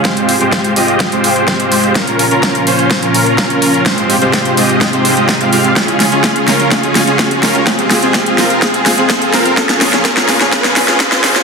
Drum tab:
HH |xxoxxxoxxxoxxxox|xxoxxxoxxxoxxxox|xxoxxxoxxxoxxxox|xxoxxxoxxxoxxxox|
SD |o---o---o---o---|o---o---o---o---|o---o---o---o---|o-o-o-o-o-o-o-o-|
BD |o---o---o---o---|o---o---o---o---|o---o---o---o---|o---o---o---o---|

HH |xxoxxxoxxxoxxxox|xxoxxxoxxxoxxxox|
SD |o-o-o-o-o-o-o-o-|oooooooooooooooo|
BD |o---o---o---o---|o---o---o---o---|